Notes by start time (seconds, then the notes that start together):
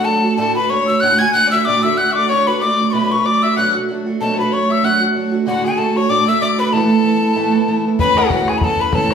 0.05 F#3 A3 D4 F#4 A4 A5
0.24 A3 D4 F#4
0.37 D2 A2 D3 A3 D4 F#4 A4 A5
0.56 D3 A3 D4 F#4 B4 B5
0.69 D3 A3 D4 F#4 C#5 C#6
0.87 D3 A3 D4 F#4 E6
1.00 D2 A2 D3 A3 D4 F#5 F#6
1.04 F#4
1.19 A3 D4 F#4 G#5 G#6
1.23 D3
1.33 D3 A3 D4 F#5 F#6
1.37 F#4
1.48 D5 E6
1.52 D3 A3 D4 F#4 E5
1.65 D2 A2 D3 A3 D4 F#4 D5 D6
1.83 D3 A3 D4 F#4 E5 E6
1.97 D3 A3 D4 F#4 F#5 F#6
2.11 E5 C#6
2.15 D3 A3 D4 F#4 D5 D6
2.29 D2 A2 D3 A3 D4 F#4 C#5 C#6
2.47 D3 A3 D4 F#4 B4 B5
2.61 D3 A3 D4 F#4 D5 D6
2.80 D3 A3 D4 F#4
2.90 B2 F#3 B4 B5 C#6
2.94 A3 D4 F#4
3.11 A3 D4 F#4 C#6
3.24 F#3 A3 D4 F#4 D5 D6
3.42 A3 D4 F#4 E5 E6
3.56 B2 F#3 A3 D4 F#4 F#5 F#6
3.74 A3 D4 F#4
3.89 F#3 A3 D4 F#4
4.06 A3 D4 F#4
4.20 B2 F#3 A3 D4 F#4 A4 A5
4.34 B4 C#5
4.38 A3 D4 F#4 B5
4.52 F#3 A3 D4 F#4 C#5 C#6
4.68 A3 D4 F#4 E5 E6
4.82 B2 F#3 A3 D4 F#4 F#5 F#6
5.00 A3 D4 F#4
5.14 F#3 A3 D4 F#4
5.31 A3 D4 F#4
5.46 D2 A2 D3 A3 D4 F#4 F#5
5.63 D3 A3 D4 F#4 G#4 G#5
5.77 D3 A3 D4 F#4 A4 A5
5.95 D3 A3 D4 F#4 C#5 C#6
6.08 D2 A2 D3 A3 D4 F#4 D5 D6
6.26 D3 A3 D4 F#4 E5 E6
6.40 D3 A3 D4 F#4 D5 D6
6.58 D3 A3 D4 F#4 B4 B5
6.72 A2 E3 A3 B3 E4 A4 A5
6.89 A3 B3 E4
7.03 E3 A3 B3 E4
7.21 A3 B3 E4
7.35 A2 E3 A3 B3 E4
7.54 A3 B3 E4
7.68 E3 A3 B3 E4
7.85 A3 B3 E4
7.99 A2 E3 B3 C#4 E4 B4 B5, bodhran
8.17 B3 C#4 E4 F#4 F#5, bodhran
8.30 A2 E3 B3 C#4 E4, bodhran
8.48 B3 C#4 E4 G#4 G#5, bodhran
8.58 E3 A4 B5, bodhran
8.63 B3 C#4 E4 A5
8.79 B3 C#4 E4 B4 B5
8.92 A2 E3 B3 C#4 E4 A4 A5, bodhran
9.10 E4, bodhran